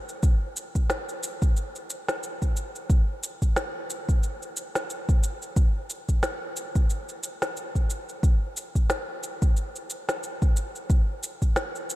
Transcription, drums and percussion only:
0.09 cabasa
0.23 kick, cabasa
0.56 cabasa
0.75 kick, cabasa
0.90 snare, cabasa
1.09 cabasa
1.23 cabasa
1.42 kick, cabasa
1.57 cabasa
1.76 cabasa
1.90 cabasa
2.08 snare, cabasa
2.23 cabasa
2.42 kick, cabasa
2.57 cabasa
2.75 cabasa
2.90 kick, cabasa
3.23 cabasa
3.42 kick, cabasa
3.56 snare, cabasa
3.90 cabasa
4.09 kick, cabasa
4.23 cabasa
4.42 cabasa
4.57 cabasa
4.75 snare, cabasa
4.90 cabasa
5.09 kick, cabasa
5.23 cabasa
5.42 cabasa
5.56 kick, cabasa
5.90 cabasa
6.09 kick, cabasa
6.23 snare, cabasa
6.56 cabasa
6.75 kick, cabasa
6.90 cabasa
7.09 cabasa
7.23 cabasa
7.42 snare, cabasa
7.57 cabasa
7.75 kick, cabasa
7.90 cabasa
8.09 cabasa
8.23 kick, cabasa
8.57 cabasa
8.75 kick, cabasa
8.90 snare, cabasa
9.23 cabasa
9.42 kick, cabasa
9.57 cabasa
9.76 cabasa
9.90 cabasa
10.09 snare, cabasa
10.23 cabasa
10.42 kick, cabasa
10.57 cabasa
10.76 cabasa
10.90 kick, cabasa
11.23 cabasa
11.42 kick, cabasa
11.56 snare, cabasa
11.75 cabasa
11.90 cabasa

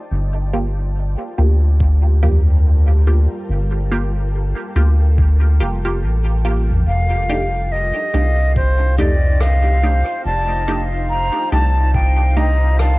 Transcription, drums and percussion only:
1.80 kick
2.23 mid tom
5.18 kick
6.71 mid tom
7.29 shaker
8.14 shaker
8.56 kick
8.97 mid tom, shaker
9.41 cross-stick
9.83 shaker
10.68 shaker
11.52 shaker
11.94 kick
12.37 shaker
12.79 cross-stick

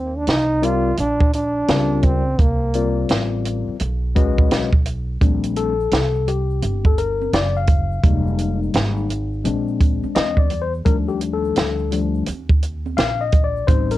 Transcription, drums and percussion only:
0.27 snare, closed hi-hat
0.63 closed hi-hat
0.97 closed hi-hat
1.20 kick
1.33 closed hi-hat
1.68 snare, closed hi-hat
2.03 kick, closed hi-hat
2.39 kick, closed hi-hat
2.74 closed hi-hat
3.09 snare, closed hi-hat
3.45 closed hi-hat
3.80 closed hi-hat
4.16 kick, closed hi-hat
4.38 kick
4.51 snare, closed hi-hat
4.73 kick
4.86 closed hi-hat
5.21 kick, closed hi-hat, shaker
5.43 closed hi-hat, shaker
5.56 closed hi-hat, shaker
5.80 shaker
5.91 snare, closed hi-hat, shaker
6.14 shaker
6.27 closed hi-hat, low conga, shaker
6.50 shaker
6.62 closed hi-hat, high conga, shaker
6.85 kick, shaker
6.98 closed hi-hat
7.22 high conga, shaker
7.33 snare, closed hi-hat, shaker
7.56 shaker
7.67 kick, closed hi-hat, low conga, shaker
7.92 shaker
8.04 kick, closed hi-hat, shaker
8.27 shaker
8.38 closed hi-hat
8.63 shaker
8.74 snare, closed hi-hat, shaker
8.97 shaker
9.09 closed hi-hat, low conga, shaker
9.33 shaker
9.45 closed hi-hat, high conga, shaker
9.68 shaker
9.80 kick, closed hi-hat, shaker
10.04 high conga, shaker
10.15 snare, closed hi-hat, shaker
10.37 kick, shaker
10.50 closed hi-hat, low conga, shaker
10.74 shaker
10.85 kick, closed hi-hat, shaker
11.08 shaker
11.21 closed hi-hat
11.44 shaker
11.56 snare, closed hi-hat, shaker
11.78 shaker
11.91 closed hi-hat, low conga, shaker
12.14 shaker
12.26 closed hi-hat, high conga, shaker
12.49 kick, shaker
12.63 closed hi-hat
12.86 high conga, shaker
12.97 snare, closed hi-hat, shaker
13.20 shaker
13.32 kick, closed hi-hat, low conga, shaker
13.56 shaker
13.68 kick, closed hi-hat, shaker
13.91 closed hi-hat, shaker

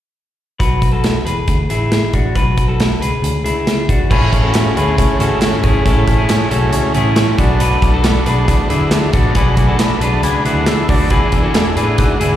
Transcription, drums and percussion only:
0.60 kick, closed hi-hat
0.82 kick, closed hi-hat
1.04 snare, closed hi-hat
1.27 closed hi-hat
1.48 kick, closed hi-hat
1.70 closed hi-hat
1.92 snare, closed hi-hat
2.13 kick, closed hi-hat
2.35 kick, closed hi-hat
2.57 kick, closed hi-hat
2.80 snare, closed hi-hat
3.02 closed hi-hat
3.24 closed hi-hat
3.46 closed hi-hat
3.67 snare, closed hi-hat
3.89 kick, closed hi-hat
4.11 kick, crash
4.33 kick, closed hi-hat
4.54 snare, clap, closed hi-hat
4.77 closed hi-hat
4.98 kick, closed hi-hat
5.20 closed hi-hat
5.42 snare, clap, closed hi-hat
5.64 kick, closed hi-hat
5.86 kick, closed hi-hat
6.08 kick, closed hi-hat
6.29 snare, clap, closed hi-hat
6.51 closed hi-hat
6.73 closed hi-hat
6.94 closed hi-hat
7.16 snare, clap, closed hi-hat
7.38 kick, closed hi-hat
7.60 closed hi-hat
7.82 kick, closed hi-hat
8.04 snare, clap, closed hi-hat
8.26 closed hi-hat
8.48 kick, closed hi-hat
8.70 closed hi-hat
8.91 snare, clap, closed hi-hat
9.13 kick, closed hi-hat
9.35 kick, closed hi-hat
9.57 kick, closed hi-hat
9.79 snare, clap, closed hi-hat
10.01 closed hi-hat
10.23 closed hi-hat
10.45 closed hi-hat
10.66 snare, clap, closed hi-hat
10.89 kick, open hi-hat
11.10 kick, closed hi-hat
11.32 kick, closed hi-hat
11.54 snare, clap, closed hi-hat
11.77 closed hi-hat
11.98 kick, closed hi-hat
12.21 closed hi-hat

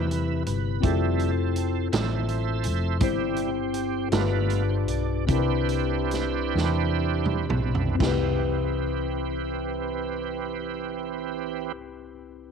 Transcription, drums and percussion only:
0.11 closed hi-hat
0.46 closed hi-hat
0.83 kick, closed hi-hat
1.19 closed hi-hat
1.56 closed hi-hat
1.93 snare, closed hi-hat
2.28 closed hi-hat
2.64 closed hi-hat
3.00 kick, closed hi-hat
3.36 closed hi-hat
3.74 closed hi-hat
4.12 snare, closed hi-hat
4.50 closed hi-hat
4.88 closed hi-hat
5.28 kick, closed hi-hat
5.69 closed hi-hat
6.11 snare, closed hi-hat
6.57 snare
7.26 mid tom
7.50 mid tom
7.75 floor tom
8.00 kick, snare, crash

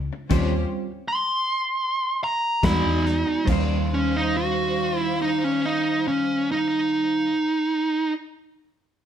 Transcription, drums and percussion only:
0.31 kick, closed hi-hat, crash
2.63 kick, snare, closed hi-hat
3.06 snare
3.48 kick, crash

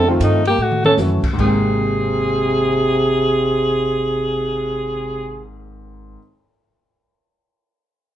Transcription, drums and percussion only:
0.21 kick, hi-hat pedal, ride
0.45 ride
0.71 mid tom
0.85 mid tom
0.97 snare, hi-hat pedal
1.24 kick, crash
1.38 kick, crash
1.65 cymbal swell

